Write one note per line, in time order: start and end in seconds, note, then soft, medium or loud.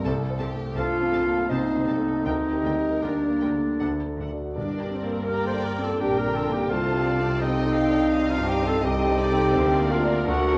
0.05 0.14 C2 medium
0.05 2.22 C2 medium
0.05 0.13 C3 medium
0.05 0.15 C4 medium
0.05 0.41 A4 medium
0.05 0.14 A4 medium
0.05 0.14 A5 medium
0.30 0.68 C5 soft
0.39 0.50 C2 medium
0.39 0.48 C3 soft
0.39 0.47 C4 medium
0.39 0.76 G4 medium
0.39 0.47 A4 medium
0.39 0.47 A5 soft
0.55 0.92 A3 soft
0.76 0.85 C2 medium
0.76 0.84 C3 medium
0.76 0.84 C4 soft
0.76 1.54 D4 medium
0.76 1.46 F4 medium
0.76 1.50 A4 medium
0.76 0.84 A4 soft
0.76 1.16 C5 soft
0.76 1.50 F5 medium
0.76 0.85 A5 soft
1.01 1.40 C4 soft
1.11 1.21 C2 soft
1.11 1.19 C3 soft
1.11 1.21 C4 soft
1.11 1.21 A4 soft
1.11 1.21 A5 soft
1.26 1.50 A#3 soft
1.49 1.58 C2 soft
1.49 1.58 C3 soft
1.49 1.90 C4 soft
1.49 1.58 C4 soft
1.49 2.27 C4 medium
1.49 2.24 D#4 soft
1.49 2.25 D#4 medium
1.49 1.58 A4 soft
1.49 1.86 C5 medium
1.49 2.25 D#5 soft
1.49 1.59 A5 soft
1.76 2.16 C3 soft
1.87 1.96 C2 soft
1.87 1.95 C3 soft
1.87 1.95 C4 soft
1.87 2.25 A4 soft
1.87 1.96 A4 soft
1.87 1.96 A5 soft
1.99 2.25 A3 soft
2.24 3.76 D2 soft
2.24 2.34 D2 soft
2.24 2.32 D3 soft
2.24 2.35 A#3 soft
2.24 3.03 C4 medium
2.24 3.03 D#4 medium
2.24 3.02 D#4 medium
2.24 4.19 A#4 soft
2.24 2.35 A#4 soft
2.24 3.05 D#5 soft
2.24 2.34 G5 soft
2.52 2.93 G4 soft
2.63 2.73 D2 soft
2.63 2.71 D3 soft
2.63 2.72 A#3 soft
2.63 2.72 A#4 soft
2.63 2.73 G5 soft
2.79 3.19 G3 soft
3.02 3.11 D2 soft
3.02 3.10 D3 soft
3.02 4.18 A#3 soft
3.02 3.10 A#3 soft
3.02 4.18 D4 soft
3.02 4.19 D4 soft
3.02 3.44 G4 soft
3.02 3.11 A#4 soft
3.02 4.19 D5 soft
3.02 3.10 G5 soft
3.30 3.71 A#3 soft
3.41 3.50 D2 soft
3.41 3.49 D3 soft
3.41 3.50 A#3 soft
3.41 3.49 A#4 soft
3.41 3.49 G5 soft
3.56 3.81 A3 soft
3.80 3.89 D2 soft
3.80 4.54 D2 soft
3.80 3.88 D3 soft
3.80 3.88 D4 soft
3.80 3.89 A4 soft
3.80 3.89 F#5 soft
4.06 4.47 A3 soft
4.17 4.27 D2 soft
4.17 4.25 D3 soft
4.17 4.29 D4 soft
4.17 4.28 A4 soft
4.17 4.29 F#5 soft
4.32 4.54 D4 soft
4.32 4.54 F#4 soft
4.56 5.98 G1 soft
4.56 5.97 G2 medium
4.56 6.67 G2 soft
4.56 5.62 G2 medium
4.56 4.91 D4 soft
4.56 5.98 A#4 soft
4.56 5.25 D5 soft
4.80 5.19 G4 soft
4.93 5.29 C4 medium
5.04 5.43 A#3 soft
5.27 6.01 A#3 soft
5.27 5.67 G4 soft
5.27 5.48 G4 medium
5.27 5.45 A#4 medium
5.27 5.98 D5 medium
5.27 6.00 G5 soft
5.27 5.46 A#5 medium
5.47 5.66 A4 medium
5.47 5.66 C5 medium
5.47 5.65 C5 medium
5.47 5.66 C6 medium
5.54 5.92 D4 soft
5.64 5.85 G4 medium
5.64 5.83 A#4 medium
5.64 5.81 A#5 medium
5.78 6.02 C4 soft
5.78 6.01 A4 medium
5.78 6.00 A4 medium
5.78 6.02 A5 medium
5.84 6.02 F4 medium
6.00 6.72 A#1 soft
6.00 6.71 A#2 soft
6.00 6.71 D4 soft
6.00 6.20 D4 medium
6.00 6.39 D4 soft
6.00 6.19 G4 medium
6.00 6.69 A#4 soft
6.00 6.72 A#4 medium
6.00 6.19 G5 medium
6.00 6.70 G5 soft
6.18 6.38 G4 medium
6.18 6.36 A#4 medium
6.18 6.37 A#4 medium
6.18 6.37 A#5 medium
6.26 6.63 D3 soft
6.35 6.54 F4 medium
6.35 6.51 A4 medium
6.35 6.53 A4 medium
6.35 6.54 A5 medium
6.49 6.72 A#3 soft
6.49 6.69 G4 medium
6.49 6.71 G5 medium
6.53 6.71 D#4 medium
6.53 6.72 G4 medium
6.69 8.79 C2 medium
6.69 8.80 C2 soft
6.69 8.80 C3 medium
6.69 8.10 C4 medium
6.69 7.44 D4 medium
6.69 7.42 F4 medium
6.69 8.12 A4 medium
6.69 7.07 C5 medium
6.69 7.43 F5 medium
6.69 7.42 A5 soft
6.94 7.32 G4 soft
7.07 7.42 D5 medium
7.20 7.57 C4 soft
7.41 8.34 C4 medium
7.41 8.31 D#4 medium
7.41 7.80 G4 soft
7.41 7.77 D#5 medium
7.41 8.29 D#5 medium
7.41 7.77 G5 medium
7.66 8.04 D#4 soft
7.75 8.13 F5 medium
7.75 8.12 G5 medium
7.90 8.13 D4 soft
8.11 8.82 C4 medium
8.11 8.51 D#4 medium
8.11 8.84 G4 medium
8.11 8.81 D#5 medium
8.11 8.81 F5 medium
8.30 8.51 D4 medium
8.30 8.49 F4 medium
8.30 8.48 F4 medium
8.30 8.49 F5 medium
8.38 8.75 G2 medium
8.47 8.67 D#4 medium
8.47 8.69 G4 medium
8.47 8.66 G4 medium
8.47 8.68 G5 medium
8.62 8.84 C4 soft
8.66 8.84 F4 medium
8.66 8.84 A4 medium
8.66 8.85 A5 medium
8.82 9.53 C2 medium
8.82 9.54 C3 medium
8.82 10.25 C4 medium
8.82 9.93 D#4 medium
8.82 9.90 G4 medium
8.82 9.93 G4 medium
8.82 9.54 A4 medium
8.82 9.53 D#5 medium
8.82 9.19 D#5 medium
8.82 9.92 G5 medium
9.09 9.46 C4 medium
9.18 9.54 D5 medium
9.34 9.54 D#4 soft
9.34 9.54 A4 medium
9.54 10.26 D2 medium
9.54 10.27 D3 medium
9.54 10.58 A#4 medium
9.54 9.90 C5 medium
9.54 10.27 D5 medium
9.80 10.18 A#3 medium
9.90 10.25 D4 medium
9.90 10.27 F4 medium
9.90 10.27 A#4 medium
9.90 10.30 F5 medium
10.04 10.26 D4 medium
10.04 10.26 D5 medium
10.26 10.58 D2 medium
10.26 10.58 D3 medium
10.26 10.58 A3 medium
10.26 10.58 D4 medium
10.26 10.58 F#4 medium
10.26 10.58 A4 medium
10.26 10.58 F#5 medium
10.54 10.58 C4 soft